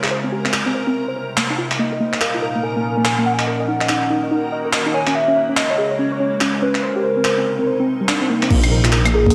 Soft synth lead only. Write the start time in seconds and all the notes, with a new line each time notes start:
1.79 D#5
2.21 F5
2.63 G#5
3.05 G#5
3.26 F#5
3.33 G#5
3.42 F#5
4.94 G#5
5.15 E5
5.57 D#5
5.99 C#5
6.62 B4
6.83 A#4
9.14 G#4